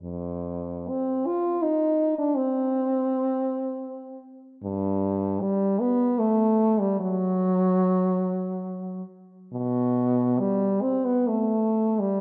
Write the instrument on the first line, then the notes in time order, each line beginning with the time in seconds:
french horn
0.03 F2
0.89 C4
1.26 F4
1.62 D#4
2.18 D4
2.35 C4
4.63 G2
5.42 G3
5.81 B3
6.19 A3
6.80 G3
7.00 F#3
9.53 B2
10.39 G3
10.82 C4
11.05 B3
11.28 A3
11.99 G3